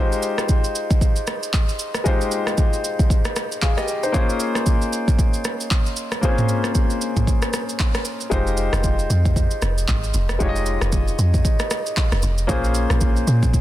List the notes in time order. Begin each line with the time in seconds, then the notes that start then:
Already playing: G#3 D#4 F4 G4
0.00 C5
0.12 shaker
0.23 shaker
0.38 cross-stick, shaker
0.49 kick, shaker
0.64 shaker
0.75 shaker
0.91 kick, shaker
1.01 kick, shaker
1.16 shaker
1.27 cross-stick, shaker
1.43 shaker
1.53 kick, clap, shaker
1.69 shaker
1.79 shaker
1.94 cross-stick, shaker
2.04 G#3 D#4 F4 G4 C5, kick, shaker
2.21 shaker
2.31 shaker
2.47 cross-stick, shaker
2.58 kick, shaker
2.73 shaker
2.84 shaker
2.99 kick, shaker
3.10 kick, shaker
3.25 cross-stick, shaker
3.36 cross-stick, shaker
3.52 shaker
3.62 G#4 F5, kick, clap, shaker
3.77 G4 D#5, cross-stick, shaker
3.88 shaker
4.03 D#4 C5, shaker
4.12 A#3 C#4 F4 G#4 C5, kick, shaker
4.30 shaker
4.40 shaker
4.55 cross-stick, shaker
4.66 kick, shaker
4.82 shaker
4.93 shaker
5.08 kick, shaker
5.19 kick, shaker
5.34 shaker
5.45 cross-stick, shaker
5.60 shaker
5.71 kick, clap, shaker
5.86 shaker
5.96 shaker
6.12 cross-stick, shaker
6.21 A#3 C4 F4 G#4 C5, kick, shaker
6.28 C#4
6.38 mid tom, shaker
6.49 shaker
6.64 cross-stick, shaker
6.75 kick, shaker
6.90 shaker
7.01 shaker
7.17 kick, mid tom, shaker
7.27 kick, shaker
7.42 cross-stick, shaker
7.53 cross-stick, shaker
7.69 shaker
7.79 kick, clap, shaker
7.95 cross-stick, shaker
8.05 shaker
8.20 shaker
8.30 F1 G#3 D#4 F4 G4 C5, kick, shaker
8.47 shaker
8.57 shaker
8.73 F1, cross-stick, shaker
8.84 kick, shaker
8.99 shaker
9.10 F2, shaker
9.25 kick, shaker
9.36 kick, shaker
9.51 shaker
9.62 F1, cross-stick, shaker
9.78 shaker
9.88 G#1, kick, clap, shaker
10.04 shaker
10.14 F1, shaker
10.29 cross-stick, shaker
10.39 F1 G#3 D#4 F4 G4 C#5, kick, shaker
10.49 D#5
10.56 shaker
10.66 shaker
10.81 F1, cross-stick, shaker
10.92 kick, shaker
11.08 shaker
11.19 F2, shaker
11.34 kick, shaker
11.45 kick, shaker
11.59 cross-stick, shaker
11.71 cross-stick, shaker
11.86 shaker
11.97 kick, clap, shaker
12.12 F1, cross-stick, shaker
12.22 F1, shaker
12.38 shaker
12.47 A#1 A#3 C#4 F4 G#4 C5, kick, shaker
12.64 shaker
12.75 shaker
12.90 A#1, cross-stick, shaker
13.01 kick, shaker
13.16 shaker
13.27 A#2, shaker
13.43 kick, shaker
13.53 kick, shaker